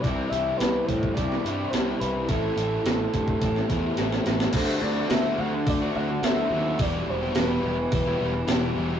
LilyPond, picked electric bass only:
\new Staff \with { instrumentName = "Picked electric bass" } { \clef bass \time 4/4 \key d \mixolydian \tempo 4 = 107 c,8 c,8 c,8 a,8 c,8 g,8 c,8 c,8 | a,,8 a,,8 a,,8 g,8 a,,8 e,8 a,,8 a,,8 | d,8 d,8 d,8 d,8 d,8 d,8 d,8 dis,8 | e,,8 e,,8 e,,8 e,,8 e,,8 e,,8 e,,8 e,,8 | }